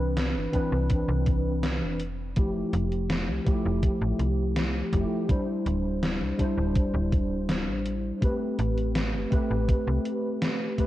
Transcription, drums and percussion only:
0.17 snare loud
0.17 closed hi-hat medium
0.35 snare soft
0.53 kick medium
0.53 closed hi-hat medium
0.90 kick loud
0.90 closed hi-hat medium
1.26 kick loud
1.26 closed hi-hat medium
1.63 snare loud
1.63 closed hi-hat medium
2.00 closed hi-hat medium
2.36 kick loud
2.36 closed hi-hat medium
2.73 closed hi-hat medium
2.92 closed hi-hat soft
3.10 snare loud
3.10 closed hi-hat medium
3.28 snare soft
3.46 kick loud
3.46 closed hi-hat medium
3.83 kick loud
3.83 closed hi-hat medium
4.19 closed hi-hat medium
4.56 snare loud
4.56 closed hi-hat medium
4.93 kick medium
4.93 closed hi-hat medium
5.29 kick loud
5.29 closed hi-hat medium
5.66 closed hi-hat medium
6.03 snare loud
6.03 closed hi-hat medium
6.21 snare soft
6.39 kick medium
6.39 closed hi-hat medium
6.76 kick loud
6.76 closed hi-hat medium
7.12 kick loud
7.12 closed hi-hat medium
7.49 snare loud
7.49 closed hi-hat medium
7.86 closed hi-hat medium
8.22 kick loud
8.22 closed hi-hat medium
8.59 closed hi-hat medium
8.78 closed hi-hat soft
8.95 snare loud
8.95 closed hi-hat medium
9.14 snare soft
9.32 kick loud
9.32 closed hi-hat medium
9.68 kick loud
9.68 closed hi-hat medium
10.05 closed hi-hat medium
10.42 snare loud
10.42 closed hi-hat medium
10.78 kick medium
10.78 closed hi-hat medium

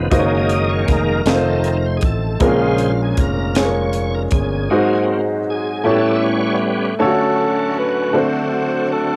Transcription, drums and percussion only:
0.11 kick medium
0.11 closed hi-hat medium
0.49 closed hi-hat soft
0.88 kick medium
0.88 snare soft
0.88 closed hi-hat medium
1.26 snare loud
1.26 closed hi-hat medium
1.64 closed hi-hat medium
2.01 kick medium
2.01 closed hi-hat medium
2.40 kick medium
2.40 closed hi-hat medium
2.78 closed hi-hat soft
3.17 kick medium
3.17 closed hi-hat medium
3.55 snare loud
3.55 closed hi-hat medium
3.93 closed hi-hat medium
4.31 kick medium
4.31 closed hi-hat medium

